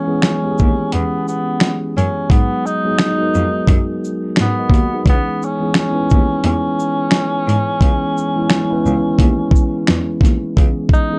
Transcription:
0.00 0.07 E3 medium
0.00 0.07 G#3 medium
0.00 0.08 B3 medium
0.00 0.09 C#4 medium
0.00 0.24 C#4 loud
0.00 0.09 G#4 medium
0.07 0.29 E3 medium
0.07 0.29 G#3 medium
0.07 0.30 B3 medium
0.07 0.30 C#4 medium
0.07 0.30 G#4 medium
0.22 0.95 C#4 medium
0.22 finger snap loud
0.22 snare loud
0.22 closed hi-hat medium
0.42 1.34 G#3 medium
0.42 1.35 B3 medium
0.42 1.35 C#4 medium
0.42 1.34 E4 medium
0.42 0.49 G4 medium
0.51 1.39 G#4 medium
0.58 0.68 D#2 medium
0.58 kick medium
0.58 shaker medium
0.92 1.02 E2 medium
0.92 1.27 B3 loud
0.92 closed hi-hat medium
1.28 1.80 B3 medium
1.28 shaker soft
1.60 finger snap medium
1.60 snare loud
1.60 closed hi-hat medium
1.97 2.05 F#2 medium
1.97 2.32 C#4 medium
1.97 closed hi-hat soft
1.97 shaker soft
2.29 2.38 G#2 loud
2.29 2.64 F#3 medium
2.29 2.64 G#3 medium
2.29 2.65 B3 medium
2.29 2.67 B3 loud
2.29 2.65 D#4 medium
2.29 2.65 G#4 medium
2.29 kick loud
2.29 closed hi-hat medium
2.66 4.03 D#4 loud
2.66 shaker soft
2.84 3.05 F#3 medium
2.84 3.06 G#3 medium
2.84 3.06 B3 medium
2.84 3.07 D#4 medium
2.84 3.07 G#4 medium
2.99 finger snap loud
2.99 snare loud
2.99 closed hi-hat medium
3.18 4.10 G#3 medium
3.18 4.11 B3 medium
3.18 4.11 D#4 medium
3.18 4.10 F#4 medium
3.18 4.12 A#4 medium
3.34 3.43 F2 medium
3.34 shaker soft
3.67 3.76 F#2 loud
3.67 kick loud
3.67 closed hi-hat medium
4.04 shaker soft
4.36 4.47 G#2 medium
4.36 finger snap medium
4.36 snare loud
4.36 closed hi-hat medium
4.41 5.04 B3 medium
4.59 4.72 A#4 medium
4.59 4.71 D#5 medium
4.70 4.78 D#2 medium
4.70 4.90 F#4 medium
4.70 4.90 B4 medium
4.70 kick medium
4.74 closed hi-hat soft
4.74 shaker soft
4.94 5.25 D#4 medium
4.94 5.06 G#4 medium
5.04 5.14 C#2 loud
5.04 5.40 E3 medium
5.04 5.40 G#3 medium
5.04 5.41 B3 medium
5.04 5.41 C#4 medium
5.04 5.41 G#4 medium
5.04 kick loud
5.04 closed hi-hat medium
5.09 5.46 B3 loud
5.42 5.77 C#4 loud
5.42 shaker soft
5.60 5.81 E3 medium
5.60 5.82 G#3 medium
5.60 5.82 B3 medium
5.60 5.83 C#4 medium
5.60 5.83 G#4 medium
5.74 finger snap loud
5.74 snare loud
5.74 closed hi-hat medium
5.79 6.42 C#4 loud
5.91 6.85 G#3 medium
5.91 6.85 B3 medium
5.91 6.85 C#4 medium
5.91 6.85 E4 medium
5.91 6.86 B4 medium
6.10 6.20 D#2 medium
6.10 kick medium
6.10 shaker soft
6.44 6.52 E2 medium
6.44 9.86 C#4 loud
6.44 closed hi-hat medium
6.80 shaker soft
7.11 finger snap medium
7.11 snare loud
7.11 closed hi-hat medium
7.47 7.55 G#2 medium
7.47 closed hi-hat medium
7.47 shaker soft
7.81 7.89 C#2 loud
7.81 8.16 E3 medium
7.81 8.16 G#3 medium
7.81 8.17 B3 medium
7.81 8.17 C#4 medium
7.81 8.18 G#4 medium
7.81 kick loud
7.81 closed hi-hat medium
8.17 shaker medium
8.36 8.57 E3 medium
8.36 8.57 G#3 medium
8.36 8.58 B3 medium
8.36 8.58 C#4 medium
8.36 8.58 E4 medium
8.50 finger snap loud
8.50 snare loud
8.50 closed hi-hat medium
8.70 9.62 G#3 medium
8.70 9.63 B3 medium
8.70 9.63 C#4 medium
8.70 9.62 E4 loud
8.70 9.63 B4 loud
8.85 8.93 C#2 medium
8.85 shaker soft
9.19 9.27 D#2 loud
9.19 kick medium
9.19 closed hi-hat medium
9.51 kick medium
9.55 shaker soft
9.87 9.97 E2 medium
9.87 finger snap loud
9.87 snare loud
9.87 closed hi-hat medium
10.21 10.29 D#2 medium
10.21 kick medium
10.21 snare soft
10.25 closed hi-hat medium
10.25 shaker medium
10.57 10.66 C#2 loud
10.57 10.92 E3 medium
10.57 10.92 G#3 medium
10.57 10.93 B3 medium
10.57 10.93 C#4 medium
10.57 10.94 G#4 medium
10.57 kick loud
10.57 closed hi-hat medium
10.89 11.19 D#4 loud
10.89 kick medium
10.93 shaker soft
11.11 11.19 E3 medium
11.11 11.19 G#3 medium
11.11 11.19 B3 medium
11.11 11.19 C#4 medium
11.11 11.19 G#4 medium

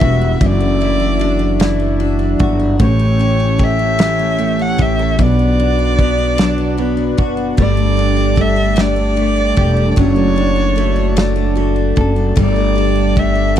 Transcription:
0.00 0.39 E1 medium
0.00 0.45 E3 medium
0.00 0.38 G3 medium
0.00 0.41 G3 medium
0.00 0.49 B3 medium
0.00 0.21 E4 medium
0.00 0.81 E4 medium
0.00 2.75 E4 medium
0.00 0.39 F#4 medium
0.00 0.80 F#4 medium
0.00 0.85 F#4 medium
0.00 0.47 E5 medium
0.00 kick medium
0.00 ride soft
0.21 0.84 E4 medium
0.41 2.36 F#1 loud
0.41 2.79 F#2 medium
0.41 1.59 E3 medium
0.41 2.78 F#3 medium
0.41 2.77 D4 medium
0.41 kick loud
0.41 ride medium
0.46 2.03 D5 medium
0.60 1.79 A3 medium
0.81 1.61 E4 medium
0.81 1.18 F#4 medium
0.81 ride soft
1.00 1.38 D4 medium
1.19 1.99 D4 medium
1.19 1.99 F#4 medium
1.19 ride soft
1.39 2.18 D4 medium
1.60 2.79 E3 medium
1.60 3.19 E4 medium
1.60 snare loud
1.60 ride medium
1.80 2.99 A3 medium
2.00 2.88 D4 medium
2.00 2.38 F#4 medium
2.00 ride soft
2.19 2.58 D4 medium
2.39 2.77 G1 medium
2.39 2.87 F#4 medium
2.39 2.88 F#4 medium
2.39 kick medium
2.39 ride soft
2.60 2.87 D4 medium
2.79 4.75 A1 medium
2.79 5.19 A2 medium
2.79 3.98 E3 medium
2.79 5.16 A3 medium
2.79 5.17 C#4 medium
2.79 5.17 G4 medium
2.79 3.65 C#5 medium
2.79 kick loud
2.79 ride medium
2.99 4.18 A3 medium
3.19 3.98 C#4 medium
3.19 3.57 G4 medium
3.19 ride soft
3.40 3.78 C#4 medium
3.59 4.38 A3 medium
3.59 4.38 G4 medium
3.59 kick medium
3.59 ride soft
3.63 4.63 E5 loud
3.79 4.58 C#4 medium
3.99 5.19 E3 medium
3.99 5.27 C#4 medium
3.99 snare loud
3.99 ride medium
4.19 5.27 A3 medium
4.38 5.27 A3 medium
4.38 4.78 G4 medium
4.38 ride soft
4.59 4.98 C#4 medium
4.59 4.83 F#5 loud
4.78 5.17 A1 medium
4.78 4.99 G4 medium
4.78 5.27 G4 medium
4.78 5.23 E5 loud
4.78 kick medium
4.78 ride soft
4.99 5.27 C#4 medium
4.99 5.27 A4 medium
5.19 7.19 B1 loud
5.19 7.58 B2 medium
5.19 6.37 F#3 medium
5.19 7.56 B3 medium
5.19 13.60 D4 medium
5.19 7.55 F#4 medium
5.19 7.19 D5 loud
5.19 kick loud
5.19 ride medium
5.39 6.57 B3 medium
5.59 6.39 D4 medium
5.59 5.98 F#4 medium
5.59 ride soft
5.79 6.18 D4 medium
5.99 6.78 B3 medium
5.99 6.76 F#4 medium
5.99 kick medium
5.99 ride soft
6.18 6.97 D4 medium
6.38 7.66 F#3 medium
6.38 7.98 D4 medium
6.38 snare loud
6.38 ride medium
6.58 7.57 B3 medium
6.77 7.66 B3 medium
6.77 7.16 F#4 medium
6.77 ride soft
6.97 7.37 D4 medium
7.17 7.56 F#1 medium
7.17 7.66 F#4 medium
7.17 kick medium
7.17 ride soft
7.37 8.16 D4 medium
7.57 9.53 G1 medium
7.57 9.97 G3 medium
7.57 9.95 G3 medium
7.57 7.77 A3 medium
7.57 13.60 A4 medium
7.57 kick loud
7.57 ride medium
7.61 8.42 D5 loud
7.77 8.75 A3 medium
7.97 8.78 D4 medium
7.97 8.35 G4 medium
7.97 ride soft
8.17 8.56 D4 medium
8.36 9.18 A3 medium
8.36 9.15 G4 medium
8.36 kick medium
8.36 ride soft
8.41 8.82 E5 loud
8.56 9.36 D4 medium
8.76 8.96 A3 medium
8.76 10.37 D4 medium
8.76 snare loud
8.76 ride medium
8.80 9.92 D5 loud
8.96 9.96 A3 medium
9.16 10.77 A3 medium
9.16 9.55 G4 medium
9.16 ride soft
9.36 9.76 D4 medium
9.56 9.95 E1 medium
9.56 10.05 G4 medium
9.56 kick medium
9.56 ride soft
9.77 10.56 D4 medium
9.92 10.02 D5 medium
9.96 11.93 F#1 loud
9.96 12.37 F#3 medium
9.96 12.35 F#3 medium
9.96 10.15 A3 medium
9.96 11.58 C#5 loud
9.96 kick loud
9.96 ride medium
10.16 11.16 A3 medium
10.36 11.17 D4 medium
10.36 10.74 F#4 medium
10.36 ride soft
10.56 10.95 D4 medium
10.76 11.57 A3 medium
10.76 11.54 F#4 medium
10.76 ride soft
10.96 11.75 D4 medium
11.16 11.35 A3 medium
11.16 12.76 D4 medium
11.16 snare loud
11.16 ride medium
11.36 12.35 A3 medium
11.55 13.17 A3 medium
11.55 11.95 F#4 medium
11.55 ride soft
11.76 12.16 D4 medium
11.96 12.35 F#1 medium
11.96 12.44 F#4 medium
11.96 13.60 A4 medium
11.96 kick medium
11.96 ride soft
12.16 12.95 D4 medium
12.36 13.60 G1 loud
12.36 13.60 G3 medium
12.36 12.55 A3 medium
12.36 kick loud
12.36 ride medium
12.41 13.21 D5 loud
12.56 13.55 A3 medium
12.75 13.55 D4 medium
12.75 13.15 G4 medium
12.75 ride soft
12.96 13.34 D4 medium
13.16 13.60 A3 medium
13.16 13.60 G4 medium
13.16 13.58 E5 loud
13.16 kick medium
13.16 ride soft
13.35 13.60 D4 medium
13.56 13.60 A3 medium
13.56 13.60 D4 medium
13.56 ride medium

